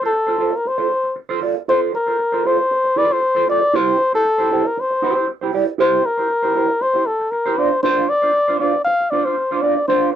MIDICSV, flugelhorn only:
0, 0, Header, 1, 2, 480
1, 0, Start_track
1, 0, Key_signature, -1, "minor"
1, 0, Tempo, 512821
1, 1574, Time_signature, 4, 2, 24, 8
1, 9504, End_track
2, 0, Start_track
2, 0, Title_t, "Flugelhorn"
2, 0, Program_c, 0, 56
2, 54, Note_on_c, 0, 69, 97
2, 528, Note_on_c, 0, 70, 90
2, 542, Note_off_c, 0, 69, 0
2, 633, Note_on_c, 0, 72, 103
2, 647, Note_off_c, 0, 70, 0
2, 1103, Note_off_c, 0, 72, 0
2, 1582, Note_on_c, 0, 72, 102
2, 1688, Note_off_c, 0, 72, 0
2, 1831, Note_on_c, 0, 70, 104
2, 2308, Note_on_c, 0, 72, 104
2, 2322, Note_off_c, 0, 70, 0
2, 2785, Note_on_c, 0, 74, 110
2, 2799, Note_off_c, 0, 72, 0
2, 2926, Note_on_c, 0, 72, 112
2, 2940, Note_off_c, 0, 74, 0
2, 3267, Note_off_c, 0, 72, 0
2, 3276, Note_on_c, 0, 74, 106
2, 3517, Note_on_c, 0, 72, 125
2, 3531, Note_off_c, 0, 74, 0
2, 3873, Note_off_c, 0, 72, 0
2, 3884, Note_on_c, 0, 69, 105
2, 4369, Note_on_c, 0, 70, 89
2, 4383, Note_off_c, 0, 69, 0
2, 4493, Note_on_c, 0, 72, 104
2, 4507, Note_off_c, 0, 70, 0
2, 4954, Note_off_c, 0, 72, 0
2, 5435, Note_on_c, 0, 72, 108
2, 5670, Note_on_c, 0, 70, 100
2, 5684, Note_off_c, 0, 72, 0
2, 6384, Note_on_c, 0, 72, 108
2, 6398, Note_off_c, 0, 70, 0
2, 6613, Note_on_c, 0, 69, 94
2, 6627, Note_off_c, 0, 72, 0
2, 6844, Note_on_c, 0, 70, 90
2, 6858, Note_off_c, 0, 69, 0
2, 7091, Note_on_c, 0, 72, 91
2, 7105, Note_off_c, 0, 70, 0
2, 7322, Note_off_c, 0, 72, 0
2, 7328, Note_on_c, 0, 72, 116
2, 7573, Note_on_c, 0, 74, 111
2, 7587, Note_off_c, 0, 72, 0
2, 8041, Note_off_c, 0, 74, 0
2, 8046, Note_on_c, 0, 74, 91
2, 8273, Note_off_c, 0, 74, 0
2, 8279, Note_on_c, 0, 77, 112
2, 8522, Note_on_c, 0, 74, 97
2, 8536, Note_off_c, 0, 77, 0
2, 8654, Note_on_c, 0, 72, 98
2, 8668, Note_off_c, 0, 74, 0
2, 9003, Note_on_c, 0, 74, 89
2, 9017, Note_off_c, 0, 72, 0
2, 9242, Note_off_c, 0, 74, 0
2, 9247, Note_on_c, 0, 72, 105
2, 9473, Note_off_c, 0, 72, 0
2, 9504, End_track
0, 0, End_of_file